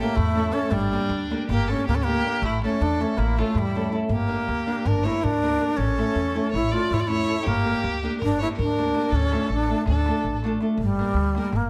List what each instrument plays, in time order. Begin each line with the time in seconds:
0.00 nylon-string guitar A3 C#4 E4 A4, ney A#3, violin G4
0.16 upright bass E2, ney A3, violin E4, darbuka dum
0.27 darbuka tek
0.35 nylon-string guitar A3 C#4 E4 A4, darbuka tek
0.52 nylon-string guitar A3 C#4 E4 A4, ney C#4, violin A4, darbuka tek
0.63 darbuka tek
0.71 upright bass G1, ney G3, violin D4, darbuka dum
0.91 nylon-string guitar A#3 D4 G4 A#4, darbuka tek
1.09 upright bass D2, darbuka tek
1.30 nylon-string guitar A#3 D4 G4 A#4, darbuka tek
1.41 darbuka tek
1.48 upright bass G1, ney A#3, violin G4, darbuka tek, darbuka dum
1.60 darbuka tek
1.68 nylon-string guitar A#3 D4 G4, ney C#4, violin A4, darbuka tek
1.72 nylon-string guitar A#4
1.86 upright bass D2, ney A#3, violin G4, darbuka dum
1.94 ney C#4, violin A4
2.02 ney A#3, violin G4
2.07 nylon-string guitar A#3 D4 G4 A#4, darbuka tek
2.26 nylon-string guitar A#3 D4 G4 A#4, darbuka tek
2.42 upright bass A1, ney A3, violin E4, darbuka dum
2.54 darbuka tek
2.62 nylon-string guitar A3 C#4 E4 A4, ney C#4, violin A4, darbuka tek
2.81 upright bass E2, ney D4, violin A4, darbuka tek
2.99 nylon-string guitar A3 C#4 E4 A4, ney C#4, violin A4, darbuka tek
3.17 upright bass A1, ney A#3, violin E4, darbuka tek
3.37 nylon-string guitar A3 C#4 E4 A4, ney A3, violin F4, darbuka tek
3.48 darbuka tek
3.55 upright bass E2, ney G3, violin E4, darbuka dum
3.66 darbuka tek
3.74 nylon-string guitar A3 C#4 E4 A4, darbuka tek
3.85 darbuka tek
3.92 nylon-string guitar A3 C#4 E4 A4, darbuka tek
4.09 upright bass G1, ney A#3, violin G4, darbuka dum
4.27 nylon-string guitar A#3 D4 G4 A#4
4.48 upright bass D2, darbuka tek
4.66 nylon-string guitar A#3 D4 G4 A#4, darbuka tek
4.78 darbuka tek
4.85 upright bass G1, ney D4, violin A#4, darbuka tek, darbuka dum
5.04 nylon-string guitar A#3 D4 G4 A#4, ney E4, violin C#5, darbuka tek
5.21 upright bass D2, ney D4, violin A#4, darbuka dum
5.35 darbuka tek
5.42 nylon-string guitar A#3 D4 G4 A#4, darbuka tek
5.60 nylon-string guitar A#3 D4 G4 A#4, darbuka tek
5.77 upright bass A1, ney C#4, violin A4, darbuka dum
5.98 nylon-string guitar A3 C#4 E4 A4, darbuka tek
6.15 upright bass E2, darbuka tek
6.34 nylon-string guitar A3 C#4 E4 A4, darbuka tek
6.52 upright bass A1, ney E4, violin C#5, darbuka tek, darbuka dum
6.66 darbuka tek
6.72 nylon-string guitar A3 C#4 E4 A4, ney F4, violin D5
6.76 darbuka tek
6.91 upright bass E2, ney E4, violin C#5, darbuka dum
7.00 ney F4, violin D5, darbuka tek
7.07 nylon-string guitar A3 C#4 E4 A4, ney E4, violin C#5
7.11 darbuka tek
7.27 nylon-string guitar A3 C#4 E4 A4
7.43 ney A#3, violin G4
7.47 upright bass G1, darbuka dum
7.64 nylon-string guitar A#3 D4 G4 A#4, darbuka tek
7.84 upright bass D2, darbuka tek
8.03 nylon-string guitar A#3 D4 G4 A#4
8.13 darbuka tek
8.18 upright bass G1, violin A#4, darbuka tek, darbuka dum
8.24 ney D4
8.38 nylon-string guitar A#3 D4 G4, violin C#5, darbuka tek
8.43 ney E4, nylon-string guitar A#4
8.56 upright bass D2, violin A#4, darbuka dum
8.61 ney D4
8.69 darbuka tek
8.78 nylon-string guitar A#3 D4 G4 A#4, darbuka tek
8.95 nylon-string guitar A#3 D4 G4 A#4, darbuka tek
9.04 darbuka tek
9.10 upright bass D2, violin A4, darbuka dum
9.15 ney C#4
9.32 nylon-string guitar A3 D4 F4 A4, darbuka tek
9.41 darbuka tek
9.46 upright bass A1, violin A4, darbuka tek
9.53 ney D4
9.58 darbuka tek
9.67 nylon-string guitar A3 D4 F4 A4, darbuka tek
9.86 upright bass D2, ney D4, violin A4, darbuka tek, darbuka dum
9.97 darbuka tek
10.06 nylon-string guitar A3 D4 F4 A4, darbuka tek
10.15 darbuka tek
10.24 upright bass A1, darbuka dum
10.42 nylon-string guitar A3 D4 F4 A4, darbuka tek
10.61 nylon-string guitar A3 D4 F4 A4, darbuka tek
10.78 upright bass G1, ney G3, darbuka dum
10.99 nylon-string guitar A#3 D4 G4 A#4, darbuka tek
11.14 upright bass D2, darbuka tek
11.35 nylon-string guitar A#3 D4 G4 A#4, darbuka tek
11.45 darbuka tek
11.53 upright bass G1, ney A#3, darbuka tek, darbuka dum
11.63 darbuka tek